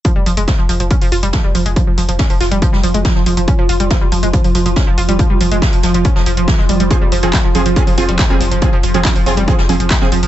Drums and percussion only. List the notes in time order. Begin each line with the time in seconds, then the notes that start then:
0.05 kick, closed hi-hat
0.26 closed hi-hat, open hi-hat
0.37 closed hi-hat
0.47 kick, snare, closed hi-hat
0.69 closed hi-hat, open hi-hat
0.80 closed hi-hat
0.91 kick, closed hi-hat
1.01 open hi-hat
1.11 closed hi-hat, open hi-hat
1.23 closed hi-hat
1.33 kick, snare, closed hi-hat
1.55 closed hi-hat, open hi-hat
1.66 closed hi-hat
1.76 kick, closed hi-hat
1.98 closed hi-hat, open hi-hat
2.09 closed hi-hat
2.19 kick, snare, closed hi-hat
2.30 open hi-hat
2.40 snare, closed hi-hat, open hi-hat
2.51 closed hi-hat
2.62 kick, closed hi-hat
2.73 snare
2.83 closed hi-hat, open hi-hat
2.94 closed hi-hat
3.05 kick, snare, closed hi-hat
3.16 snare
3.26 closed hi-hat, open hi-hat
3.37 closed hi-hat
3.47 kick, closed hi-hat
3.69 closed hi-hat, open hi-hat
3.80 closed hi-hat
3.90 kick, snare, closed hi-hat
4.12 closed hi-hat, open hi-hat
4.23 closed hi-hat
4.33 kick, closed hi-hat
4.44 open hi-hat
4.55 closed hi-hat, open hi-hat
4.66 closed hi-hat
4.76 kick, snare, closed hi-hat
4.98 closed hi-hat, open hi-hat
5.09 closed hi-hat
5.19 kick, closed hi-hat
5.41 closed hi-hat, open hi-hat
5.52 closed hi-hat
5.62 kick, snare, closed hi-hat
5.73 open hi-hat
5.82 snare, closed hi-hat, open hi-hat
5.94 closed hi-hat
6.04 kick, closed hi-hat
6.16 snare
6.26 closed hi-hat, open hi-hat
6.37 closed hi-hat
6.48 kick, snare, closed hi-hat
6.59 snare
6.69 closed hi-hat, open hi-hat
6.80 closed hi-hat
6.91 kick, closed hi-hat
7.12 closed hi-hat, open hi-hat
7.23 closed hi-hat
7.33 kick, snare, clap, closed hi-hat
7.55 closed hi-hat, open hi-hat
7.66 closed hi-hat
7.76 kick, closed hi-hat
7.87 open hi-hat
7.98 closed hi-hat, open hi-hat
8.08 closed hi-hat
8.19 kick, snare, clap, closed hi-hat
8.41 closed hi-hat, open hi-hat
8.52 closed hi-hat
8.61 kick, closed hi-hat
8.83 closed hi-hat, open hi-hat
8.94 closed hi-hat
9.04 kick, snare, clap, closed hi-hat
9.16 open hi-hat
9.26 snare, closed hi-hat, open hi-hat
9.37 closed hi-hat
9.48 kick, closed hi-hat
9.59 snare
9.69 closed hi-hat, open hi-hat
9.80 closed hi-hat
9.90 kick, snare, clap, closed hi-hat
10.02 snare
10.12 closed hi-hat, open hi-hat
10.23 closed hi-hat